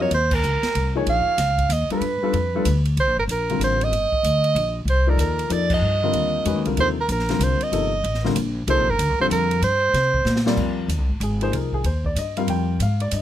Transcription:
Already playing: upright bass F2
0.00 grand piano F#3 C4 F4 A#4 D#5, soprano saxophone C#5
0.11 upright bass D#2, soprano saxophone C5, ride
0.31 soprano saxophone A#4, kick, crash
0.43 upright bass C#2, hi-hat pedal
0.63 snare, ride
0.75 upright bass C2, ride
0.95 grand piano F3 A#3 D#4 G#4 C#5
1.07 upright bass A#1, soprano saxophone F5, ride
1.26 muted upright bass stroke
1.38 upright bass C#2, snare, hi-hat pedal, ride
1.58 kick, ride
1.69 upright bass D#2, soprano saxophone D#5, hi-hat pedal, ride
1.89 grand piano G3 B3 D4 F4 A4, soprano saxophone B4, muted upright bass stroke, ride
2.00 upright bass G2, ride
2.22 grand piano G3 B3 D4 F4 A4, muted upright bass stroke
2.33 upright bass F2, ride
2.55 grand piano G3 B3 D4 F4 A4
2.65 upright bass D2, hi-hat pedal, ride
2.85 ride
2.97 upright bass C2, soprano saxophone C5, ride
3.07 upright bass A#1
3.17 upright bass G1, soprano saxophone A#4
3.27 upright bass A#1, soprano saxophone A#4, hi-hat pedal, ride
3.50 grand piano D3 G3 C4 F4 A#4, ride
3.59 upright bass A1, hi-hat pedal, ride
3.64 soprano saxophone C5
3.81 soprano saxophone D#5, ride
3.91 upright bass G1, ride
4.12 muted upright bass stroke, kick
4.23 upright bass D2, hi-hat pedal, ride
4.44 ride
4.55 upright bass A#1, ride
4.85 upright bass C2, soprano saxophone C5, ride
5.07 grand piano F3 A#3 D#4 A4 D5, soprano saxophone A#4
5.17 upright bass D#2, soprano saxophone A#4, hi-hat pedal, ride
5.39 ride
5.50 upright bass F2, grand piano F3 A#3 D#4 A4 D5, soprano saxophone D5, hi-hat pedal, ride
5.70 kick, crash
5.74 soprano saxophone D#5
5.81 upright bass G2
6.03 grand piano D3 G3 C4 F4 A#4
6.13 upright bass D#2, ride
6.45 upright bass F2, grand piano D#3 G#3 C#4 F#4 B4, hi-hat pedal, ride
6.55 upright bass D#2
6.65 upright bass C2, grand piano D3 G3 C4 F4 A#4, ride
6.77 upright bass D#2, grand piano C3 F3 A#3 D#4 A4, soprano saxophone C5, ride
7.00 soprano saxophone A#4
7.08 upright bass A#1, soprano saxophone A#4, hi-hat pedal, ride
7.19 snare
7.29 grand piano D3 G3 C4 F4 A#4, snare, ride
7.39 upright bass C2, hi-hat pedal, ride
7.43 soprano saxophone C5
7.61 soprano saxophone D#5, ride
7.72 upright bass G1, grand piano C3 F3 A#3 D#4 A4, ride
8.04 upright bass A1, ride
8.14 snare
8.24 grand piano D3 G3 C4 F4 A#4, snare
8.35 upright bass A#1, hi-hat pedal, ride
8.67 upright bass C2, grand piano C3 F3 A#3 D#4 A4, soprano saxophone C5, ride
8.78 upright bass A#1
8.88 upright bass G1, soprano saxophone A#4
8.99 upright bass D2, hi-hat pedal, ride
9.09 upright bass C2
9.20 upright bass A#1, grand piano D3 G3 C4 F4 A4, soprano saxophone C5
9.30 upright bass F2, soprano saxophone A#4, hi-hat pedal, ride
9.51 ride
9.62 upright bass G2, soprano saxophone C5, ride
9.93 upright bass C3, snare, ride
10.14 kick
10.25 upright bass A#2, snare, hi-hat pedal
10.36 snare
10.46 grand piano G3 C4 F4 A#4 D5, snare
10.57 upright bass F2, kick, crash
10.88 upright bass D#2, hi-hat pedal, ride
10.98 upright bass C2
11.09 upright bass G#1
11.20 upright bass G#1, grand piano G#4, hi-hat pedal, ride
11.41 grand piano F3 A#3 D#4 G#4 C5, ride
11.52 upright bass C2, grand piano A#4, ride
11.73 grand piano G#4, kick
11.84 upright bass D#2, grand piano C5, ride
12.04 grand piano D5, kick
12.15 upright bass G2, grand piano D#5, hi-hat pedal, ride
12.37 grand piano G3 C4 F4 A#4 F5, ride
12.47 upright bass F2, grand piano G5, ride
12.79 upright bass G#2, grand piano F5, hi-hat pedal, ride
13.00 grand piano D5, ride
13.11 upright bass G2, grand piano D#5, hi-hat pedal, ride

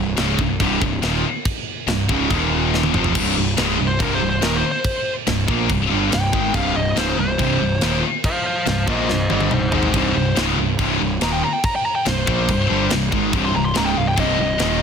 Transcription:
Already playing: picked electric bass C1, distorted electric guitar C2 G2
0.17 picked electric bass C#1, distorted electric guitar C#2 G#2 C#3, snare, crash
0.39 picked electric bass C1, distorted electric guitar C2 G2, kick
0.60 picked electric bass C1, distorted electric guitar C2 G2 C3, kick, crash
0.81 picked electric bass C1, distorted electric guitar C2 G2, kick
1.02 picked electric bass D#1, distorted electric guitar D#2 A#2 D#3, snare, crash
1.45 kick, crash
1.87 picked electric bass C1, distorted electric guitar C2 G2, snare, crash
2.09 picked electric bass C#1, distorted electric guitar C#2 G#2 C#3, kick
2.30 picked electric bass D#1, distorted electric guitar D#2 A#2 D#3, kick, crash
2.74 snare
2.83 high tom
2.93 picked electric bass F1, distorted electric guitar F2 C3 F3, mid tom
3.04 floor tom
3.15 picked electric bass C1, distorted electric guitar C2 G2 C3, kick, crash
3.37 picked electric bass C1, distorted electric guitar C2 G2
3.57 picked electric bass C#1, distorted electric guitar C#2 G#2 C#3, snare, crash
3.77 picked electric bass C1, distorted electric guitar C2 G2
3.87 lead electric guitar C5
3.99 picked electric bass C1, distorted electric guitar C2 G2 C3, lead electric guitar A#4, kick, crash
4.15 lead electric guitar C5
4.20 picked electric bass C1, distorted electric guitar C2 G2
4.29 lead electric guitar C5
4.41 picked electric bass D#1, distorted electric guitar D#2 A#2 D#3, lead electric guitar A#4, snare, crash
4.57 lead electric guitar C5
4.71 lead electric guitar C5
4.85 kick, crash
5.27 picked electric bass C1, distorted electric guitar C2 G2, snare, crash
5.48 picked electric bass A#1, distorted electric guitar A#2 F3 A#3, kick
5.69 picked electric bass C1, distorted electric guitar C2 G2, kick, crash
5.90 picked electric bass G1, distorted electric guitar G2 D3 G3
6.11 picked electric bass C1, distorted electric guitar C2 G2, lead electric guitar G5, snare, crash
6.33 picked electric bass G#1, distorted electric guitar G#2 D#3 G#3, kick
6.53 picked electric bass C1, distorted electric guitar C2 G2 C3, lead electric guitar F5, kick, crash
6.75 picked electric bass C1, distorted electric guitar C2 G2, lead electric guitar D#5
6.96 picked electric bass C#1, distorted electric guitar C#2 G#2 C#3, lead electric guitar C5, snare, crash
7.17 picked electric bass C1, distorted electric guitar C2 G2, lead electric guitar C5
7.38 picked electric bass C1, distorted electric guitar C2 G2 C3, kick, crash
7.59 picked electric bass C1, distorted electric guitar C2 G2
7.81 picked electric bass D#1, distorted electric guitar D#2 A#2 D#3, snare, crash
8.24 lead electric guitar C5 F5, kick, crash
8.46 lead electric guitar C5 F5
8.66 picked electric bass C1, distorted electric guitar C2 G2, lead electric guitar C5 F5, snare, crash
8.87 picked electric bass A#1, distorted electric guitar A#2 F3 A#3, lead electric guitar C5 D#5, kick
9.08 picked electric bass C1, distorted electric guitar C2 G2, lead electric guitar C5 D#5, snare
9.30 picked electric bass G1, distorted electric guitar G2 D3 G3, lead electric guitar C5 D#5, high tom
9.40 high tom
9.51 picked electric bass C1, distorted electric guitar C2 G2, lead electric guitar D#4 C5, mid tom
9.72 picked electric bass G#1, distorted electric guitar G#2 D#3 G#3, lead electric guitar D#4 C5, floor tom
9.83 floor tom
9.93 picked electric bass C1, distorted electric guitar C2 G2 C3, lead electric guitar D#4, kick, crash
9.98 lead electric guitar C5
10.15 picked electric bass C1, distorted electric guitar C2 G2, lead electric guitar C5
10.36 picked electric bass C#1, distorted electric guitar C#2 G#2 C#3, snare, crash
10.57 picked electric bass C1, distorted electric guitar C2 G2
10.79 picked electric bass C1, distorted electric guitar C2 G2 C3, kick, crash
11.00 picked electric bass C1, distorted electric guitar C2 G2
11.21 picked electric bass D#1, distorted electric guitar D#2 A#2 D#3, lead electric guitar A#5, snare, crash
11.32 lead electric guitar G5
11.43 lead electric guitar A#5
11.53 lead electric guitar G5
11.64 lead electric guitar A#5, kick, crash
11.76 lead electric guitar G5
11.86 lead electric guitar A#5
11.95 lead electric guitar G5
12.06 picked electric bass C1, distorted electric guitar C2 G2, lead electric guitar C5, snare, crash
12.27 picked electric bass A#1, distorted electric guitar A#2 F3 A#3, kick
12.49 picked electric bass C1, distorted electric guitar C2 G2, kick, crash
12.69 picked electric bass G1, distorted electric guitar G2 D3 G3
12.90 picked electric bass C1, distorted electric guitar C2 G2, snare, crash
13.12 picked electric bass G#1, distorted electric guitar G#2 D#3 G#3, kick
13.32 picked electric bass C1, distorted electric guitar C2 G2 C3, kick, crash
13.45 lead electric guitar C6
13.54 picked electric bass C1, distorted electric guitar C2 G2, lead electric guitar A#5
13.65 lead electric guitar C6
13.74 picked electric bass C#1, distorted electric guitar C#2 G#2 C#3, lead electric guitar A#5, snare, crash
13.85 lead electric guitar G5
13.95 picked electric bass C1, distorted electric guitar C2 G2, lead electric guitar F5
14.08 lead electric guitar G5
14.16 picked electric bass C1, distorted electric guitar C2 G2 C3, lead electric guitar D#5, kick, crash
14.21 distorted electric guitar G2 C3
14.37 picked electric bass C1, distorted electric guitar C2 G2
14.58 picked electric bass D#1, distorted electric guitar D#2 A#2 D#3, snare, crash

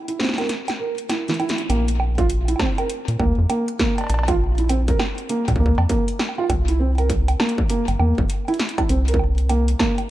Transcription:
0.08 felt piano E4, closed hi-hat
0.19 felt piano C4, snare
0.24 snare
0.29 snare
0.34 snare
0.38 felt piano A#4, snare, closed hi-hat, high bongo
0.41 snare
0.44 snare
0.47 snare
0.49 snare, closed hi-hat
0.68 snare, closed hi-hat, high bongo
0.79 felt piano A#4
0.98 closed hi-hat
1.10 felt piano E4, snare, closed hi-hat, high bongo
1.28 felt piano E3, snare, closed hi-hat
1.34 closed hi-hat
1.40 felt piano E4, closed hi-hat, high bongo
1.49 snare, closed hi-hat
1.58 closed hi-hat
1.70 analog synth bass A#1, felt piano A#3, closed hi-hat, high bongo
1.88 closed hi-hat
2.00 high bongo
2.18 felt piano F4, kick, closed hi-hat
2.30 closed hi-hat
2.48 felt piano E4, closed hi-hat, high bongo
2.56 felt piano C4, kick, snare, cowbell, high bongo
2.66 high bongo
2.78 felt piano A#4, closed hi-hat, high bongo
2.90 closed hi-hat
3.08 analog synth bass A#2, closed hi-hat
3.19 analog synth bass D2, felt piano A#3, kick, high bongo
3.38 analog synth bass F2
3.50 felt piano A#3, closed hi-hat, high bongo
3.68 closed hi-hat
3.79 felt piano A#3, kick, snare
3.98 closed hi-hat, cowbell, high bongo
4.01 cowbell
4.04 cowbell
4.07 analog synth bass A#1, closed hi-hat, cowbell
4.10 cowbell
4.14 cowbell
4.19 cowbell
4.23 cowbell
4.28 felt piano F4, kick, closed hi-hat, high bongo
4.58 felt piano E4, closed hi-hat
4.69 felt piano C4, closed hi-hat, high bongo
4.88 felt piano A#4, kick, closed hi-hat
4.99 snare, high bongo
5.18 closed hi-hat
5.29 felt piano A#3, closed hi-hat
5.48 analog synth bass A#2, kick, closed hi-hat, high bongo
5.56 analog synth bass D2, felt piano A#3, kick
5.66 kick
5.78 analog synth bass F2, cowbell, high bongo
5.89 felt piano A#3, kick, closed hi-hat
6.08 closed hi-hat
6.19 snare, high bongo
6.29 high bongo
6.38 felt piano F4, high bongo
6.44 high bongo
6.50 analog synth bass C2, kick, closed hi-hat, high bongo
6.68 felt piano E4, closed hi-hat
6.80 felt piano C4
6.98 felt piano A#4, closed hi-hat, high bongo
7.10 kick, closed hi-hat
7.28 closed hi-hat, high bongo
7.40 felt piano A#3, snare, cowbell
7.49 closed hi-hat
7.58 kick
7.70 felt piano A#3, closed hi-hat
7.88 analog synth bass G1, closed hi-hat, high bongo
7.99 analog synth bass E2, felt piano A#3, high bongo
8.18 analog synth bass G1, kick
8.30 closed hi-hat
8.48 felt piano E4, closed hi-hat, high bongo
8.54 closed hi-hat
8.60 snare, closed hi-hat
8.69 closed hi-hat
8.78 felt piano E4, kick, closed hi-hat, cowbell, high bongo
8.89 analog synth bass C2, felt piano C4, closed hi-hat
9.08 felt piano A#4, closed hi-hat
9.14 kick
9.19 high bongo
9.38 closed hi-hat
9.49 felt piano A#3, closed hi-hat, high bongo
9.68 closed hi-hat
9.79 felt piano A#3, kick, snare, cowbell
9.98 closed hi-hat, high bongo

